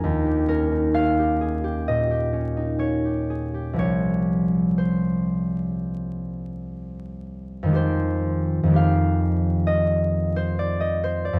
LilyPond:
<<
  \new Staff \with { instrumentName = "Harp" } { \time 4/4 \key f \minor \tempo 4 = 63 << { <f'' bes''>8 bes'8 f''4 ees''4 des''4 | des''4 c''2. | c''4 f''4 ees''8. c''16 d''16 ees''16 c''16 d''16 | } \\ { ees,16 g'16 des'16 ees'16 des'16 g'16 aes'16 g'16 bes,16 g'16 des'16 ees'16 des'16 g'16 aes'16 g'16 | <c, f bes g'>1~ | <c, f bes g'>1 | } >> }
  \new Staff \with { instrumentName = "Harp" } { \clef bass \time 4/4 \key f \minor r1 | r1 | <f, ees aes g'>4 <f, ees aes g'>2. | }
>>